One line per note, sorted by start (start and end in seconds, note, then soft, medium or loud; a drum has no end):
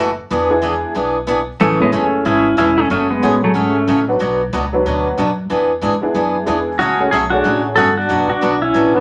0.00 0.18 F#1 medium
0.30 0.82 E2 medium
0.30 0.51 E3 medium
0.30 0.51 B3 medium
0.30 0.51 D4 medium
0.30 0.52 G#4 medium
0.49 0.92 G#3 medium
0.49 0.92 B3 medium
0.49 0.92 D4 medium
0.49 0.93 E4 medium
0.49 0.93 G#4 medium
0.62 0.73 E3 medium
0.62 0.74 B3 medium
0.62 0.74 D4 medium
0.62 0.74 G#4 medium
0.95 1.47 B1 medium
0.95 1.16 E3 medium
0.95 1.16 B3 medium
0.95 1.16 D4 medium
0.95 1.16 G#4 medium
1.27 1.38 E3 medium
1.27 1.39 B3 medium
1.27 1.39 D4 medium
1.27 1.39 G#4 medium
1.60 1.92 A1 medium
1.60 1.81 C#3 medium
1.60 1.81 E3 medium
1.60 1.79 E3 medium
1.60 1.81 A3 medium
1.60 1.81 C#4 medium
1.60 1.81 G#4 medium
1.79 2.22 G#3 medium
1.79 2.22 A3 medium
1.79 1.93 B3 medium
1.79 2.22 C#4 medium
1.79 2.22 E4 medium
1.79 2.23 G#4 medium
1.83 1.93 G#3 medium
1.92 2.24 F#1 medium
1.92 2.03 C#3 medium
1.92 2.04 E3 medium
1.92 2.04 A3 medium
1.92 2.23 A3 medium
1.92 2.26 C#4 medium
1.92 2.04 C#4 medium
1.92 2.04 G#4 medium
2.25 2.57 G#1 medium
2.25 2.46 C#3 medium
2.25 2.46 E3 medium
2.25 2.46 A3 medium
2.25 2.46 C#4 medium
2.25 2.56 C#4 medium
2.25 2.57 E4 loud
2.25 2.46 G#4 medium
2.57 2.89 E1 medium
2.57 2.68 C#3 medium
2.57 2.69 E3 medium
2.57 2.69 A3 medium
2.57 2.69 C#4 medium
2.57 2.76 C#4 medium
2.57 2.79 E4 loud
2.57 2.69 G#4 medium
2.78 2.89 A3 medium
2.78 2.90 C#4 loud
2.90 3.22 F#1 medium
2.90 3.11 C#3 medium
2.90 3.11 F#3 medium
2.90 3.11 A3 medium
2.90 3.09 A3 medium
2.90 3.11 C#4 medium
2.90 3.11 C#4 loud
2.90 3.11 G#4 medium
3.10 3.41 G#3 medium
3.10 3.44 B3 loud
3.22 3.54 A1 medium
3.22 3.34 C#3 medium
3.22 3.34 F#3 medium
3.22 3.71 G#3 medium
3.22 3.71 A3 medium
3.22 3.34 A3 medium
3.22 3.71 C#4 medium
3.22 3.34 C#4 medium
3.22 3.71 F#4 medium
3.22 3.34 G#4 medium
3.22 3.72 G#4 medium
3.44 3.55 F#3 medium
3.44 3.54 A3 medium
3.54 3.86 G#1 medium
3.54 3.75 C#3 medium
3.54 3.75 F#3 medium
3.54 3.75 A3 medium
3.54 4.04 A3 medium
3.54 3.76 C#4 medium
3.54 4.04 C#4 medium
3.54 3.76 G#4 medium
3.87 4.19 A1 medium
3.87 3.98 C#3 medium
3.87 3.99 F#3 medium
3.87 3.99 A3 medium
3.87 3.99 C#4 medium
3.87 3.99 G#4 medium
4.08 4.18 F#3 medium
4.08 4.19 B3 medium
4.08 4.19 D4 medium
4.08 4.19 F#4 medium
4.08 4.19 B4 medium
4.19 4.51 B1 medium
4.19 4.40 B2 medium
4.19 4.41 F#3 medium
4.19 4.41 B3 medium
4.19 4.41 D4 medium
4.19 4.41 F#4 medium
4.53 4.84 C#2 medium
4.53 4.64 B2 medium
4.53 4.64 F#3 medium
4.53 4.64 B3 medium
4.53 4.64 D4 medium
4.53 4.64 F#4 medium
4.73 5.15 F#3 medium
4.73 5.15 B3 medium
4.73 5.15 D4 medium
4.73 5.15 F#4 medium
4.73 5.15 B4 medium
4.85 5.16 D2 medium
4.85 5.06 B2 medium
4.85 5.06 F#3 medium
4.85 5.06 B3 medium
4.85 5.07 D4 medium
4.85 5.07 F#4 medium
5.18 5.49 F#2 medium
5.18 5.29 B2 medium
5.18 5.29 F#3 medium
5.18 5.29 B3 medium
5.18 5.29 D4 medium
5.18 5.29 F#4 medium
5.50 5.81 E2 medium
5.50 5.70 E3 medium
5.50 5.71 B3 medium
5.50 5.71 D4 medium
5.50 5.71 G#4 medium
5.81 6.01 G#2 medium
5.81 5.93 E3 medium
5.81 5.93 B3 medium
5.81 5.93 D4 medium
5.81 5.94 G#4 medium
6.01 6.44 G#3 medium
6.01 6.44 B3 medium
6.01 6.44 D4 medium
6.01 6.45 E4 medium
6.01 6.45 G#4 medium
6.01 muted upright bass stroke soft
6.14 6.46 F#2 medium
6.14 6.35 E3 medium
6.14 6.35 B3 medium
6.14 6.36 D4 medium
6.14 6.36 G#4 medium
6.46 6.79 E2 medium
6.46 6.58 E3 medium
6.46 6.79 G#3 medium
6.46 6.79 B3 medium
6.46 6.58 B3 medium
6.46 6.79 D4 medium
6.46 6.58 D4 medium
6.46 6.79 E4 medium
6.46 6.59 G#4 medium
6.46 6.80 G#4 medium
6.79 7.11 C#2 medium
6.79 7.01 C#3 medium
6.79 7.01 F#3 medium
6.79 7.01 A3 medium
6.79 7.10 C#4 medium
6.79 7.01 C#4 medium
6.79 7.11 F#4 medium
6.79 7.01 G#4 medium
6.99 7.10 G#3 medium
6.99 7.11 A3 medium
6.99 7.11 C#4 medium
6.99 7.11 F#4 medium
6.99 7.11 G#4 medium
7.11 7.44 B1 medium
7.11 7.23 C#3 medium
7.11 7.23 F#3 medium
7.11 7.24 A3 medium
7.11 7.18 C#4 medium
7.11 7.24 C#4 medium
7.11 7.17 G#4 medium
7.11 7.24 G#4 medium
7.30 7.74 G#3 medium
7.30 7.74 A3 medium
7.30 7.62 D4 medium
7.30 7.61 F#4 loud
7.30 7.75 F#4 medium
7.30 7.75 G#4 medium
7.30 7.74 C#5 medium
7.44 7.76 A1 medium
7.44 7.65 C#3 medium
7.44 7.65 F#3 medium
7.44 7.66 A3 medium
7.44 7.66 C#4 medium
7.44 7.66 G#4 medium
7.76 8.09 G1 medium
7.76 7.88 C#3 medium
7.76 7.88 F#3 medium
7.76 7.88 A3 medium
7.76 7.88 C#4 medium
7.76 7.96 F#4 medium
7.76 7.89 G#4 medium
7.76 7.97 A4 loud
7.98 8.28 D4 medium
7.98 8.29 F#4 loud
8.09 8.29 F#1 medium
8.09 8.30 B2 medium
8.09 8.30 F#3 medium
8.09 8.30 B3 medium
8.09 8.30 D4 medium
8.09 8.31 F#4 medium
8.30 8.61 D4 medium
8.30 8.62 F#4 loud
8.30 muted upright bass stroke soft
8.41 8.74 B1 medium
8.41 8.53 B2 medium
8.41 8.53 F#3 medium
8.41 8.53 B3 medium
8.41 8.54 D4 medium
8.41 8.54 F#4 medium
8.62 8.93 C#4 medium
8.62 8.92 E4 medium
8.74 9.00 A1 medium
8.74 8.95 B2 medium
8.74 8.95 F#3 medium
8.74 8.95 B3 medium
8.74 8.96 D4 medium
8.74 8.96 F#4 medium
8.93 9.00 F#3 medium
8.93 9.00 B3 medium
8.93 9.00 D4 medium
8.93 9.00 F#4 medium
8.93 9.00 B4 medium